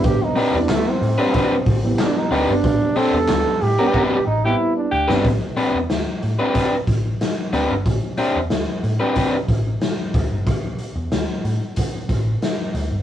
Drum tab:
HH |x-o-x-o-x-o-x-o-|x-o-x-o---------|x-x-x-x-x-x-x-x-|x-x-x-x-x-x-x-x-|
CP |----x-------x---|----x-----------|----------------|----------------|
SD |----o-------o---|----o----------o|----o-------o---|----o-------o---|
BD |o-------o-o-----|o-------o-------|o-------o-o-----|o-------o-o---o-|

HH |x-x-x-x-x-x-x-x-|
CP |----------------|
SD |----o-------o---|
BD |o-------o-o-----|